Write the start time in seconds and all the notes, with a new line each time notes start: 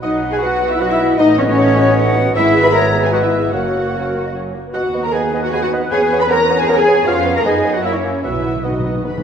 0.02 B1 F#3 B3 D#4 B4 D#5 F#5
0.23 B3 F#4
0.31 G#4 G#5
0.41 F#3 B3 D#4 F#4 F#5
0.62 B3 F#4
0.69 E4 E5
0.80 F#3 B3 D#4 F#4 D#5 F#5
0.88 E4 E5
1.01 B3 F#4
1.18 A1 A3 B3 D#4 D#5
1.37 B3 C#4 F#4 C#5
1.47 C#4 C#5
1.59 A3 D#4 C#5
1.77 B3 F#4
1.97 A3 D#4 F#5
2.16 B3 F#4
2.35 G#1 G#3 B3 E4 E5
2.55 B3 G#4
2.63 B4 B5
2.73 G#3 E4 A#4 C#5 A#5
2.94 B3 G#4
3.02 G#4 G#5
3.12 G#3 E4 F#4 B4 D#5 F#5
3.22 E4 E5
3.34 B3 G#4
3.52 F#1 F#3 A#3 C#4 F#4 A#4 C#5 F#5
3.75 A#3 F#4
3.94 F#3 C#4 A#4
4.14 A#3 F#4
4.26 D#5
4.35 F#3 C#4 C#5
4.54 A#3 F#4
4.66 B4
4.73 D#2 B3 D#4 F#4 D#5 F#5
4.94 B3 D#5
5.03 A#4 A#5
5.12 B3 G#4 B4 D#5 G#5
5.34 B3 D#5
5.42 F#4 F#5
5.52 B3 G#4 D#5 G#5
5.62 F#4 F#5
5.73 B3 D#5
5.91 E2 B3 C#4 G#4 C#5 G#5
6.13 B3 C#5
6.20 B4 B5
6.30 B3 A#4 C#5 A#5
6.50 B3 C#5
6.59 G#4 G#5
6.68 B3 A#4 C#5 A#5
6.78 G#4 G#5
6.88 B3 C#5
7.06 F2 B3 C#4 F4 C#5 F5
7.26 B3 C#5
7.35 A#4 A#5
7.45 F#2 B3 D#4 G#4 D#5 G#5
7.65 B3 D#5
7.74 F#4 F#5
7.84 A#3 E4 C#5 E5
7.93 C#4 C#5
8.04 A#3 E5
8.23 B1 B2 B3 E4 F#4 B4 E5 F#5
8.32 B2
8.39 B2
8.44 B3 F#5
8.48 B2
8.55 B2
8.64 B2 B3 D#4 F#4 D#5 F#5
8.71 B2
8.80 B2
8.85 B2 B3 F#5
8.95 B2
9.02 B2 B3 B4 B5
9.10 B2
9.17 B2